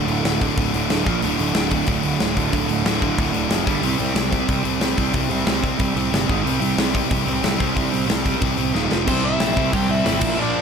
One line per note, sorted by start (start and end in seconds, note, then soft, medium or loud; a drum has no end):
0.07 0.20 D1 medium
0.07 0.22 D2 medium
0.07 0.23 A2 medium
0.07 0.24 D3 medium
0.07 open hi-hat medium
0.23 0.49 D1 medium
0.23 0.40 D2 medium
0.23 0.40 A2 medium
0.23 0.39 D3 medium
0.23 snare loud
0.23 open hi-hat medium
0.40 0.56 D2 medium
0.40 0.56 A2 medium
0.40 0.57 D3 medium
0.40 kick medium
0.40 open hi-hat medium
0.57 0.70 D1 medium
0.57 0.73 D2 medium
0.57 0.72 A2 medium
0.57 0.72 D3 loud
0.57 kick loud
0.57 open hi-hat medium
0.73 0.86 D1 medium
0.73 0.87 D2 medium
0.73 0.88 A2 medium
0.73 0.89 D3 medium
0.73 open hi-hat medium
0.88 1.02 D1 medium
0.88 1.04 D2 medium
0.88 1.05 A2 medium
0.88 1.05 D3 loud
0.88 snare loud
0.88 open hi-hat medium
1.05 1.24 A#1 medium
1.05 1.21 A#2 loud
1.05 1.22 F3 medium
1.05 1.22 A#3 loud
1.05 kick loud
1.05 open hi-hat medium
1.22 1.35 D1 medium
1.22 1.39 D2 medium
1.22 1.37 A2 medium
1.22 1.37 D3 loud
1.22 open hi-hat medium
1.37 1.51 D1 medium
1.37 1.52 D2 medium
1.37 1.53 A2 medium
1.37 1.53 D3 medium
1.37 open hi-hat medium
1.53 1.80 D1 medium
1.53 1.70 D2 medium
1.53 1.69 A2 medium
1.53 1.68 D3 loud
1.53 snare loud
1.53 open hi-hat medium
1.70 1.86 D2 medium
1.70 1.86 A2 medium
1.70 1.87 D3 medium
1.70 kick medium
1.70 open hi-hat medium
1.87 2.00 D1 medium
1.87 2.03 D2 medium
1.87 2.02 A2 loud
1.87 2.01 D3 loud
1.87 kick loud
1.87 open hi-hat medium
2.02 2.16 D1 medium
2.02 2.17 D2 medium
2.02 2.19 A2 medium
2.02 2.19 D3 medium
2.02 open hi-hat medium
2.19 2.33 D1 medium
2.19 2.35 D2 medium
2.19 2.35 A2 loud
2.19 2.34 D3 loud
2.19 snare loud
2.19 open hi-hat medium
2.35 2.49 D1 medium
2.35 2.50 D2 medium
2.35 2.51 A2 medium
2.35 2.52 D3 medium
2.35 kick medium
2.35 open hi-hat medium
2.51 2.65 D1 medium
2.51 2.68 D2 medium
2.51 2.67 A2 loud
2.51 2.67 D3 medium
2.51 kick loud
2.51 open hi-hat medium
2.68 2.81 D1 medium
2.68 2.83 D2 medium
2.68 2.83 A2 medium
2.68 2.84 D3 medium
2.68 open hi-hat medium
2.84 3.10 D1 medium
2.84 3.00 D2 medium
2.84 3.00 A2 medium
2.84 2.99 D3 loud
2.84 snare loud
2.84 open hi-hat medium
3.00 3.16 D2 medium
3.00 3.17 A2 medium
3.00 3.17 D3 medium
3.00 kick medium
3.00 open hi-hat medium
3.17 3.30 D1 medium
3.17 3.34 D2 medium
3.17 3.34 A2 medium
3.17 3.33 D3 medium
3.17 kick loud
3.17 open hi-hat medium
3.34 3.46 D1 medium
3.34 3.49 D2 medium
3.34 3.50 A2 medium
3.34 3.50 D3 medium
3.34 open hi-hat medium
3.50 3.63 F1 medium
3.50 3.65 F2 medium
3.50 3.66 C3 loud
3.50 3.66 F3 loud
3.50 snare loud
3.50 open hi-hat medium
3.65 3.79 G1 medium
3.65 3.81 G2 medium
3.65 3.82 D3 medium
3.65 3.83 G3 medium
3.65 kick loud
3.65 open hi-hat medium
3.82 3.95 C2 medium
3.82 3.99 C3 medium
3.82 3.98 G3 medium
3.82 3.98 C4 medium
3.82 open hi-hat medium
3.98 4.12 C2 medium
3.98 4.13 C3 medium
3.98 4.14 G3 medium
3.98 4.14 C4 medium
3.98 open hi-hat medium
4.14 4.40 C2 medium
4.14 4.31 C3 medium
4.14 4.30 G3 medium
4.14 4.29 C4 medium
4.14 snare loud
4.14 open hi-hat medium
4.30 4.46 C3 medium
4.30 4.47 G3 medium
4.30 4.47 C4 medium
4.30 kick medium
4.30 open hi-hat medium
4.48 4.61 C2 medium
4.48 4.63 C3 medium
4.48 4.63 G3 loud
4.48 4.62 C4 medium
4.48 kick loud
4.48 open hi-hat medium
4.63 4.77 C2 medium
4.63 4.79 C3 medium
4.63 4.80 G3 medium
4.63 4.80 C4 medium
4.63 open hi-hat medium
4.80 4.93 C2 medium
4.80 4.97 C3 medium
4.80 4.96 G3 loud
4.80 4.95 C4 loud
4.80 snare medium
4.80 open hi-hat medium
4.96 5.10 C2 medium
4.96 5.13 C3 medium
4.96 5.13 G3 medium
4.96 5.14 C4 medium
4.96 kick medium
4.96 open hi-hat medium
5.14 5.27 C2 medium
5.14 5.30 C3 medium
5.14 5.30 G3 loud
5.14 5.29 C4 medium
5.14 kick loud
5.14 open hi-hat medium
5.29 5.42 C2 medium
5.29 5.45 C3 medium
5.29 5.46 G3 medium
5.29 5.47 C4 medium
5.29 open hi-hat medium
5.46 5.70 C2 medium
5.46 5.63 C3 medium
5.46 5.62 G3 medium
5.46 5.62 C4 medium
5.46 snare loud
5.46 open hi-hat medium
5.63 5.77 C3 medium
5.63 5.78 G3 medium
5.63 5.79 C4 medium
5.63 kick medium
5.63 open hi-hat medium
5.78 5.92 C2 medium
5.78 5.95 C3 medium
5.78 5.94 G3 medium
5.78 5.94 C4 loud
5.78 kick loud
5.78 open hi-hat medium
5.95 6.08 C2 medium
5.95 6.09 C3 medium
5.95 6.10 G3 medium
5.95 6.11 C4 loud
5.95 open hi-hat medium
6.10 6.24 G1 medium
6.10 6.26 C3 medium
6.10 6.27 G3 loud
6.10 6.27 C4 loud
6.10 snare loud
6.10 open hi-hat medium
6.27 6.41 G#1 medium
6.27 6.42 G#2 medium
6.27 6.42 D#3 loud
6.27 6.43 G#3 medium
6.27 kick medium
6.27 open hi-hat soft
6.42 6.57 C2 medium
6.42 6.60 C3 medium
6.42 6.59 G3 medium
6.42 6.59 C4 loud
6.47 open hi-hat medium
6.59 6.73 C2 medium
6.59 6.75 C3 medium
6.59 6.76 G3 medium
6.59 6.76 C4 medium
6.59 open hi-hat medium
6.76 7.02 C2 medium
6.76 6.93 C3 medium
6.76 6.92 G3 medium
6.76 6.91 C4 medium
6.76 snare loud
6.76 open hi-hat medium
6.92 7.08 C3 medium
6.92 7.09 G3 medium
6.92 7.09 C4 medium
6.92 kick medium
6.92 open hi-hat medium
7.09 7.23 C2 loud
7.09 7.25 C3 medium
7.09 7.23 G3 loud
7.09 7.23 C4 medium
7.09 kick loud
7.09 open hi-hat medium
7.24 7.39 C2 medium
7.24 7.40 C3 medium
7.24 7.41 G3 medium
7.24 7.41 C4 medium
7.24 open hi-hat medium
7.41 7.55 C2 medium
7.41 7.58 C3 medium
7.41 7.57 G3 loud
7.41 7.56 C4 loud
7.41 snare loud
7.41 open hi-hat medium
7.57 7.72 C2 medium
7.57 7.73 C3 medium
7.57 7.74 G3 medium
7.57 7.74 C4 medium
7.57 kick medium
7.57 open hi-hat medium
7.75 7.88 C2 medium
7.75 7.90 C3 medium
7.75 7.89 G3 medium
7.75 7.88 C4 medium
7.75 kick loud
7.75 open hi-hat medium
7.89 8.05 C2 medium
7.89 8.05 C3 medium
7.89 8.06 G3 medium
7.89 8.06 C4 medium
7.94 open hi-hat medium
8.06 8.34 C2 medium
8.06 8.23 C3 medium
8.06 8.22 G3 medium
8.06 8.22 C4 loud
8.06 snare loud
8.06 open hi-hat medium
8.23 8.39 C3 medium
8.23 8.39 G3 medium
8.23 8.40 C4 medium
8.23 kick medium
8.23 open hi-hat medium
8.40 8.54 C2 medium
8.40 8.57 C3 medium
8.40 8.56 G3 medium
8.40 8.55 C4 medium
8.40 kick loud
8.40 open hi-hat medium
8.56 8.70 C2 medium
8.56 8.72 C3 medium
8.56 8.72 G3 medium
8.56 8.72 C4 medium
8.56 open hi-hat medium
8.72 8.87 D#1 medium
8.72 8.89 D#2 medium
8.72 8.89 A#2 medium
8.72 8.89 D#3 medium
8.72 snare medium
8.89 9.09 F1 medium
8.89 9.05 F2 medium
8.89 9.05 C3 medium
8.89 9.06 F3 loud
8.89 snare medium
9.06 9.34 C2 medium
9.06 9.37 C3 medium
9.06 9.38 G3 medium
9.06 9.39 C4 loud
9.06 9.22 C4 medium
9.06 9.24 C5 loud
9.06 kick loud
9.06 crash loud
9.24 9.69 E4 medium
9.24 9.70 E5 loud
9.38 9.54 A#1 medium
9.38 9.55 C3 medium
9.38 9.55 G3 medium
9.38 9.54 C4 medium
9.38 snare loud
9.38 open hi-hat medium
9.55 9.70 C2 medium
9.55 9.70 C3 medium
9.55 9.71 G3 medium
9.55 9.72 C4 medium
9.55 kick medium
9.72 9.86 C2 loud
9.72 10.02 C3 loud
9.72 10.03 G3 medium
9.72 10.04 C4 loud
9.72 9.88 G4 medium
9.72 kick loud
9.72 open hi-hat medium
9.76 9.91 G5 loud
9.89 10.02 C2 medium
9.89 10.34 E4 medium
9.89 10.40 E5 medium
10.04 10.19 G1 medium
10.04 10.19 C3 medium
10.04 10.20 G3 medium
10.04 10.20 C4 loud
10.04 snare loud
10.04 open hi-hat medium
10.20 10.35 A#1 medium
10.20 10.36 A#2 loud
10.20 10.35 F3 medium
10.20 10.35 A#3 loud
10.20 kick loud
10.20 crash loud
10.36 10.62 A#1 medium
10.36 10.62 A#2 medium
10.36 10.62 F3 medium
10.36 10.62 A#3 loud
10.36 10.62 D4 medium
10.42 10.62 D5 loud